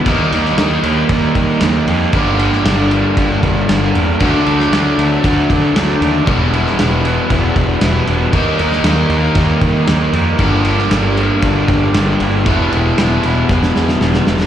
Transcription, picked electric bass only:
0.06 0.25 D#2 medium
0.33 0.52 D#2 medium
0.58 0.77 D#2 medium
0.84 1.03 D#2 medium
1.10 1.29 D#2 loud
1.36 1.55 D#3 medium
1.62 1.81 D#2 medium
1.88 2.07 F2 medium
2.13 2.52 G1 loud
2.65 3.03 G1 loud
3.17 3.36 G1 medium
3.43 3.62 G1 loud
3.69 3.88 G1 medium
3.95 4.14 E2 medium
4.21 4.40 D2 loud
4.47 4.66 D2 medium
4.73 4.91 D2 medium
4.98 5.17 D2 medium
5.25 5.43 D2 medium
5.50 5.69 D3 medium
5.76 5.95 D2 medium
6.01 6.20 D#2 medium
6.27 6.65 E1 medium
6.79 7.17 E1 medium
7.30 7.49 E1 medium
7.56 7.75 E1 medium
7.82 8.01 E1 medium
8.08 8.27 E1 medium
8.34 8.53 D#2 medium
8.59 8.78 D#2 medium
8.84 9.04 D#2 medium
9.10 9.29 D#2 medium
9.36 9.55 D#2 medium
9.61 9.81 D#3 loud
9.88 10.07 D#2 medium
10.13 10.32 F2 medium
10.39 10.77 G1 medium
10.91 11.29 G1 loud
11.43 11.62 G1 loud
11.68 11.87 G1 loud
11.94 12.13 G1 medium
12.20 12.46 G1 medium
12.46 12.65 E1 medium
12.73 12.91 E1 medium
12.98 13.17 E1 medium
13.24 13.43 E1 medium
13.50 13.69 E1 medium
13.75 13.94 E2 medium
14.00 14.19 E1 medium
14.27 14.46 E1 medium

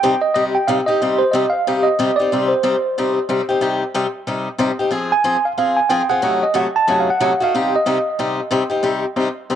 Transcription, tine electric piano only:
0.00 0.20 G5 loud
0.22 0.33 D#5 medium
0.35 0.44 D#5 medium
0.55 0.69 G5 medium
0.68 0.77 F5 medium
0.86 1.18 D#5 medium
1.19 1.33 C5 medium
1.32 1.53 D#5 medium
1.50 1.85 F5 medium
1.83 2.18 D#5 medium
2.16 2.51 D5 medium
2.48 3.11 C5 medium
5.12 5.46 G#5 medium
5.45 5.51 F5 medium
5.58 5.79 F5 medium
5.77 5.89 G#5 medium
5.89 6.10 G5 medium
6.10 6.44 F#5 medium
6.43 6.55 D#5 medium
6.56 6.65 F#5 medium
6.76 6.98 A5 medium
7.00 7.09 F5 medium
7.10 7.40 F#5 medium
7.44 7.73 F5 medium
7.76 8.36 D#5 medium

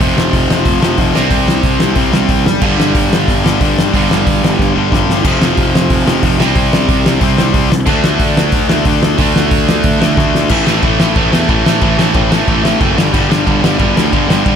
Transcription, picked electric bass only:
0.00 0.16 F1 medium
0.17 0.33 F1 medium
0.33 0.49 F1 loud
0.50 0.65 F1 medium
0.66 0.81 F1 medium
0.82 0.97 F1 loud
0.98 1.14 F1 medium
1.15 1.30 C2 medium
1.31 1.46 C2 medium
1.46 1.63 C2 medium
1.64 1.79 C2 loud
1.80 1.95 C2 medium
1.96 2.12 C2 medium
2.13 2.29 C2 loud
2.29 2.45 C2 medium
2.46 2.61 F#1 medium
2.62 2.78 G1 medium
2.79 2.94 G1 medium
2.95 3.11 G1 loud
3.12 3.27 G1 loud
3.28 3.44 G1 loud
3.44 3.60 G1 medium
3.61 3.77 G1 medium
3.77 3.93 G1 loud
3.94 4.09 G1 medium
4.10 4.26 G1 medium
4.27 4.42 G1 loud
4.43 4.58 G1 medium
4.59 4.75 G1 loud
4.76 4.91 G1 loud
4.92 5.07 G1 medium
5.07 5.23 G1 medium
5.24 5.40 F1 medium
5.41 5.57 F1 medium
5.58 5.73 F1 loud
5.75 5.90 F1 medium
5.90 6.06 F1 loud
6.07 6.22 F1 medium
6.23 6.39 F1 medium
6.40 6.55 C2 medium
6.56 6.71 C2 medium
6.73 6.88 C2 medium
6.89 7.04 C2 loud
7.05 7.21 C2 medium
7.22 7.37 C2 loud
7.39 7.53 C2 loud
7.54 7.70 C2 medium
7.71 7.86 C2 loud
7.86 8.02 D2 medium
8.04 8.19 D2 medium
8.20 8.35 D2 medium
8.37 8.52 D2 loud
8.53 8.68 D2 loud
8.70 8.85 D2 loud
8.86 9.01 D2 medium
9.02 9.18 D2 medium
9.19 9.34 D2 medium
9.35 9.51 D2 medium
9.51 9.67 D2 medium
9.69 9.84 D2 loud
9.84 10.00 D2 loud
10.01 10.17 D2 loud
10.17 10.33 D2 medium
10.34 10.49 D2 medium
10.50 10.63 A1 medium
10.68 10.80 A1 medium
10.83 10.96 A1 medium
11.00 11.12 A1 medium
11.16 11.29 A1 loud
11.32 11.45 E2 medium
11.49 11.62 A1 medium
11.66 11.79 A1 medium
11.82 11.95 A1 medium
11.99 12.11 A1 medium
12.15 12.40 A1 loud
12.48 12.73 A1 loud
12.81 12.94 F#1 medium
12.98 13.10 G1 medium
13.14 13.26 G1 medium
13.31 13.43 G1 medium
13.47 13.60 G1 loud
13.64 13.76 G1 loud
13.79 13.92 G1 loud
13.96 14.09 D2 loud
14.13 14.26 G1 medium
14.29 14.42 G1 medium
14.46 14.56 G1 medium

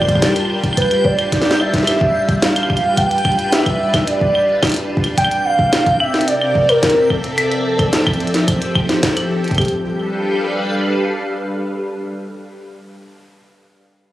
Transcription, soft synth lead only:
0.00 0.50 D5 medium
0.77 1.06 B4 medium
1.05 1.61 D5 loud
1.60 2.44 E5 loud
2.42 2.99 F5 loud
2.97 3.54 G5 loud
3.52 4.09 E5 loud
4.07 4.90 D5 medium
5.18 5.47 G5 loud
5.45 6.02 F5 loud
6.00 6.29 E5 loud
6.28 6.70 D5 loud
6.69 7.12 A#4 loud
7.10 9.03 A4 loud
9.58 9.84 G4 medium

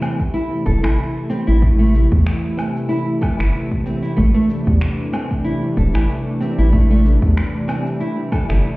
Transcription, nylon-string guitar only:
0.02 0.12 C4 medium
0.34 0.51 E4 medium
0.66 0.83 A4 medium
0.83 0.97 E4 medium
1.30 1.40 C4 medium
1.47 1.56 E4 medium
1.62 1.78 A3 medium
1.79 1.93 A3 loud
2.57 2.67 C4 medium
2.89 3.06 E4 medium
3.21 3.38 A4 medium
3.39 3.53 E4 medium
3.86 3.96 C4 medium
4.03 4.11 E4 medium
4.17 4.33 A3 medium
4.34 4.48 A3 loud
5.13 5.23 C4 medium
5.44 5.61 E4 medium
5.77 5.93 A4 medium
5.94 6.08 E4 medium
6.41 6.51 C4 medium
6.58 6.66 E4 medium
6.73 6.89 A3 medium
6.91 7.04 A3 loud
7.68 7.78 C4 medium
8.00 8.17 E4 medium
8.32 8.48 A4 medium
8.49 8.63 E4 medium

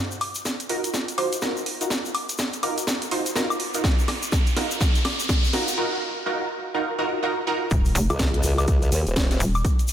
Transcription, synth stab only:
0.69 0.92 D#4 medium
0.69 0.92 F4 medium
0.69 0.92 F#4 medium
0.69 0.92 A#4 loud
1.18 1.39 D#4 medium
1.18 1.39 F4 medium
1.18 1.39 F#4 medium
1.18 1.39 C5 loud
1.42 1.64 D#4 medium
1.42 1.64 F4 medium
1.42 1.64 F#4 medium
1.42 1.64 A#4 loud
1.81 1.92 D#4 medium
1.81 1.92 F4 medium
1.81 1.92 F#4 medium
1.81 1.92 A#4 medium
2.63 2.85 D#4 medium
2.63 2.85 F4 medium
2.63 2.85 F#4 medium
2.63 2.85 A#4 loud
3.11 3.33 D#4 loud
3.11 3.33 F4 medium
3.11 3.33 F#4 medium
3.11 3.33 C5 loud
3.36 3.58 D#4 medium
3.36 3.58 F4 medium
3.36 3.58 F#4 medium
3.36 3.58 A#4 loud
3.74 3.84 D#4 medium
3.74 3.84 F4 medium
3.74 3.84 F#4 medium
3.74 3.84 A#4 medium
4.57 4.79 D#4 medium
4.57 4.79 F4 medium
4.57 4.79 F#4 medium
4.57 4.79 A#4 loud
5.53 5.76 D#4 medium
5.53 5.76 F4 medium
5.53 5.76 F#4 medium
5.53 5.76 A#4 loud
5.77 6.00 D#4 loud
5.77 6.00 F4 loud
5.77 6.00 F#4 medium
5.77 6.00 A#4 loud
6.26 6.48 D#4 loud
6.26 6.48 F4 medium
6.26 6.48 F#4 loud
6.26 6.48 A#4 loud
6.74 6.97 D#4 loud
6.74 6.97 F4 medium
6.74 6.97 F#4 medium
6.74 6.97 A#4 loud
6.98 7.21 D#4 loud
6.98 7.21 F4 medium
6.98 7.21 F#4 loud
6.98 7.21 A#4 loud
7.23 7.45 D#4 loud
7.23 7.45 F4 medium
7.23 7.45 F#4 medium
7.23 7.45 A#4 loud
7.47 7.69 D#4 loud
7.47 7.69 F4 medium
7.47 7.69 F#4 medium
7.47 7.69 A#4 loud

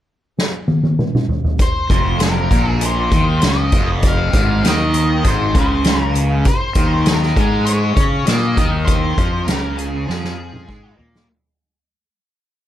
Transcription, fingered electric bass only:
1.90 2.47 F1 medium
2.51 3.08 A#1 medium
3.11 3.40 D#2 medium
3.43 3.71 C#2 loud
3.72 4.30 F1 loud
4.34 4.62 G#1 medium
4.64 5.21 D#2 medium
5.25 5.53 G#1 medium
5.55 6.42 C#2 medium
6.75 7.33 D#2 loud
7.36 7.93 G#2 medium
7.96 8.25 C#3 medium
8.28 8.56 A#2 medium
8.57 9.14 D#2 loud
9.18 9.46 F2 medium
9.47 10.04 C#2 medium
10.09 10.65 F2 medium
10.68 10.96 G#2 medium
10.99 11.27 A#2 medium

